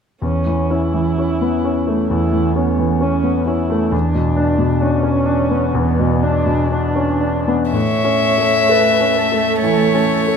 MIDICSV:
0, 0, Header, 1, 5, 480
1, 0, Start_track
1, 0, Key_signature, 3, "major"
1, 0, Tempo, 944882
1, 116, Time_signature, 4, 2, 24, 8
1, 1073, Tempo, 909091
1, 2993, Tempo, 981997
1, 4433, Tempo, 928793
1, 5298, End_track
2, 0, Start_track
2, 0, Title_t, "Violin"
2, 0, Program_c, 0, 40
2, 3954, Note_on_c, 0, 76, 51
2, 4889, Note_off_c, 0, 76, 0
2, 4908, Note_on_c, 0, 73, 42
2, 5298, Note_off_c, 0, 73, 0
2, 5298, End_track
3, 0, Start_track
3, 0, Title_t, "Viola"
3, 0, Program_c, 1, 41
3, 114, Note_on_c, 1, 61, 30
3, 358, Note_on_c, 1, 64, 30
3, 365, Note_off_c, 1, 61, 0
3, 1067, Note_off_c, 1, 64, 0
3, 1071, Note_on_c, 1, 64, 29
3, 1310, Note_off_c, 1, 64, 0
3, 1312, Note_on_c, 1, 59, 31
3, 1555, Note_on_c, 1, 61, 36
3, 1563, Note_off_c, 1, 59, 0
3, 1786, Note_off_c, 1, 61, 0
3, 1789, Note_on_c, 1, 64, 31
3, 2028, Note_on_c, 1, 62, 31
3, 2036, Note_off_c, 1, 64, 0
3, 2500, Note_on_c, 1, 61, 35
3, 2508, Note_off_c, 1, 62, 0
3, 2994, Note_on_c, 1, 59, 41
3, 3002, Note_off_c, 1, 61, 0
3, 3229, Note_on_c, 1, 62, 40
3, 3236, Note_off_c, 1, 59, 0
3, 3466, Note_off_c, 1, 62, 0
3, 3473, Note_on_c, 1, 62, 39
3, 3855, Note_off_c, 1, 62, 0
3, 3963, Note_on_c, 1, 73, 38
3, 4437, Note_on_c, 1, 71, 35
3, 4445, Note_off_c, 1, 73, 0
3, 4678, Note_on_c, 1, 69, 37
3, 4686, Note_off_c, 1, 71, 0
3, 5298, Note_off_c, 1, 69, 0
3, 5298, End_track
4, 0, Start_track
4, 0, Title_t, "Grand piano"
4, 0, Program_c, 2, 0
4, 110, Note_on_c, 2, 40, 24
4, 210, Control_c, 2, 64, 127
4, 236, Note_on_c, 2, 52, 20
4, 357, Note_on_c, 2, 61, 23
4, 433, Note_off_c, 2, 52, 0
4, 477, Note_on_c, 2, 52, 22
4, 553, Note_off_c, 2, 61, 0
4, 599, Note_on_c, 2, 61, 22
4, 671, Note_off_c, 2, 52, 0
4, 717, Note_on_c, 2, 59, 19
4, 791, Note_off_c, 2, 61, 0
4, 835, Note_on_c, 2, 61, 25
4, 837, Note_off_c, 2, 59, 0
4, 949, Note_on_c, 2, 57, 22
4, 1025, Note_off_c, 2, 61, 0
4, 1050, Note_off_c, 2, 40, 0
4, 1068, Note_on_c, 2, 40, 24
4, 1143, Note_off_c, 2, 57, 0
4, 1188, Note_on_c, 2, 52, 22
4, 1308, Note_on_c, 2, 61, 25
4, 1385, Note_off_c, 2, 52, 0
4, 1428, Note_on_c, 2, 52, 24
4, 1505, Note_off_c, 2, 61, 0
4, 1545, Note_on_c, 2, 61, 26
4, 1624, Note_off_c, 2, 52, 0
4, 1666, Note_on_c, 2, 59, 22
4, 1742, Note_off_c, 2, 61, 0
4, 1791, Note_off_c, 2, 59, 0
4, 1791, Note_on_c, 2, 61, 24
4, 1911, Note_on_c, 2, 57, 26
4, 1984, Note_off_c, 2, 61, 0
4, 2010, Note_off_c, 2, 40, 0
4, 2026, Note_on_c, 2, 40, 28
4, 2031, Note_off_c, 2, 57, 0
4, 2043, Control_c, 2, 64, 0
4, 2132, Control_c, 2, 64, 127
4, 2145, Note_on_c, 2, 47, 23
4, 2261, Note_on_c, 2, 62, 30
4, 2335, Note_off_c, 2, 47, 0
4, 2376, Note_on_c, 2, 47, 27
4, 2452, Note_off_c, 2, 62, 0
4, 2496, Note_on_c, 2, 62, 30
4, 2570, Note_off_c, 2, 47, 0
4, 2614, Note_on_c, 2, 61, 26
4, 2693, Note_off_c, 2, 62, 0
4, 2734, Note_on_c, 2, 62, 31
4, 2741, Note_off_c, 2, 61, 0
4, 2863, Note_on_c, 2, 59, 28
4, 2939, Note_off_c, 2, 62, 0
4, 2970, Note_off_c, 2, 40, 0
4, 2991, Note_on_c, 2, 40, 32
4, 3062, Note_off_c, 2, 59, 0
4, 3110, Note_on_c, 2, 47, 29
4, 3225, Note_on_c, 2, 62, 30
4, 3299, Note_off_c, 2, 47, 0
4, 3338, Note_on_c, 2, 47, 29
4, 3417, Note_off_c, 2, 62, 0
4, 3461, Note_on_c, 2, 62, 30
4, 3535, Note_off_c, 2, 47, 0
4, 3583, Note_on_c, 2, 61, 26
4, 3661, Note_off_c, 2, 62, 0
4, 3706, Note_on_c, 2, 62, 28
4, 3712, Note_off_c, 2, 61, 0
4, 3837, Note_on_c, 2, 59, 25
4, 3910, Note_off_c, 2, 62, 0
4, 3941, Note_off_c, 2, 40, 0
4, 3960, Note_off_c, 2, 59, 0
4, 3961, Note_on_c, 2, 45, 25
4, 3971, Control_c, 2, 64, 0
4, 4059, Control_c, 2, 64, 127
4, 4115, Note_on_c, 2, 61, 24
4, 4279, Note_on_c, 2, 57, 23
4, 4371, Note_off_c, 2, 61, 0
4, 4431, Note_on_c, 2, 69, 28
4, 4532, Note_off_c, 2, 57, 0
4, 4595, Note_on_c, 2, 61, 23
4, 4689, Note_off_c, 2, 69, 0
4, 4756, Note_on_c, 2, 57, 27
4, 4849, Note_off_c, 2, 61, 0
4, 4893, Note_off_c, 2, 45, 0
4, 4918, Note_on_c, 2, 52, 24
4, 5012, Note_off_c, 2, 57, 0
4, 5078, Note_on_c, 2, 61, 26
4, 5174, Note_off_c, 2, 52, 0
4, 5245, Note_on_c, 2, 57, 24
4, 5298, Note_off_c, 2, 57, 0
4, 5298, Note_off_c, 2, 61, 0
4, 5298, End_track
5, 0, Start_track
5, 0, Title_t, "Cello"
5, 0, Program_c, 3, 42
5, 3966, Note_on_c, 3, 57, 32
5, 5298, Note_off_c, 3, 57, 0
5, 5298, End_track
0, 0, End_of_file